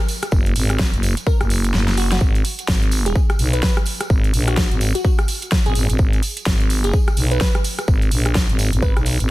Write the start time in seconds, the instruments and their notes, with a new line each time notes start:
0.09 open hi-hat, tambourine
0.22 cross-stick, closed hi-hat, tambourine
0.31 fm bass F#1, kick, tambourine
0.46 closed hi-hat, tambourine
0.56 fm bass G#1, open hi-hat, tambourine
0.70 cross-stick, closed hi-hat, tambourine
0.79 kick, snare, tambourine
0.93 fm bass F#1, closed hi-hat, tambourine
1.03 open hi-hat, tambourine
1.17 closed hi-hat, tambourine
1.27 synth pluck A#4, kick, tambourine
1.41 fm bass F#1, cross-stick, closed hi-hat, tambourine
1.50 open hi-hat, tambourine
1.64 closed hi-hat, tambourine
1.74 fm bass F#1, snare, tambourine
1.88 snare, closed hi-hat, tambourine
1.97 synth pluck F#4, open hi-hat, tambourine
2.11 synth pluck F#4, snare, closed hi-hat, tambourine
2.20 fm bass G#1, kick, tambourine
2.35 closed hi-hat, tambourine
2.45 open hi-hat, tambourine
2.58 closed hi-hat, tambourine
2.68 fm bass G#1, kick, snare, tambourine
2.82 closed hi-hat, tambourine
2.91 open hi-hat, tambourine
3.06 synth pluck G#4, closed hi-hat, tambourine
3.16 kick, tambourine
3.30 cross-stick, closed hi-hat, tambourine
3.39 fm bass B1, open hi-hat, tambourine
3.53 synth pluck B4, closed hi-hat, tambourine
3.63 synth pluck B4, kick, snare, tambourine
3.76 cross-stick, closed hi-hat, tambourine
3.86 open hi-hat, tambourine
4.00 cross-stick, closed hi-hat, tambourine
4.10 fm bass G#1, kick, tambourine
4.24 closed hi-hat, tambourine
4.34 fm bass A#1, open hi-hat, tambourine
4.48 synth pluck F#4, cross-stick, closed hi-hat, tambourine
4.57 kick, snare, tambourine
4.71 fm bass G#1, closed hi-hat, tambourine
4.81 open hi-hat, tambourine
4.95 synth pluck F#4, closed hi-hat, tambourine
5.04 synth pluck F#4, kick, tambourine
5.18 cross-stick, closed hi-hat, tambourine
5.28 open hi-hat, tambourine
5.42 closed hi-hat, tambourine
5.51 kick, snare, tambourine
5.65 fm bass G#1, synth pluck G#4, closed hi-hat, tambourine
5.75 fm bass G#1, open hi-hat, tambourine
5.90 fm bass G#1, closed hi-hat, tambourine
5.98 fm bass G#1, kick, tambourine
6.13 closed hi-hat, tambourine
6.23 open hi-hat, tambourine
6.37 closed hi-hat, tambourine
6.46 fm bass G#1, kick, snare, tambourine
6.60 closed hi-hat, tambourine
6.70 open hi-hat, tambourine
6.84 synth pluck G#4, closed hi-hat, tambourine
6.94 kick, tambourine
7.08 cross-stick, closed hi-hat, tambourine
7.17 fm bass B1, open hi-hat, tambourine
7.31 synth pluck B4, closed hi-hat, tambourine
7.41 synth pluck B4, kick, snare, tambourine
7.55 cross-stick, closed hi-hat, tambourine
7.64 open hi-hat, tambourine
7.78 cross-stick, closed hi-hat, tambourine
7.88 fm bass G#1, kick, tambourine
8.01 closed hi-hat, tambourine
8.11 fm bass A#1, open hi-hat, tambourine
8.26 cross-stick, closed hi-hat, tambourine
8.35 kick, snare, tambourine
8.49 fm bass G#1, closed hi-hat, tambourine
8.59 open hi-hat, tambourine
8.73 fm bass G#1, closed hi-hat, tambourine
8.82 synth pluck B4, kick, tambourine
8.97 fm bass B1, cross-stick, closed hi-hat, tambourine
9.06 open hi-hat, tambourine
9.19 fm bass G#1, closed hi-hat, tambourine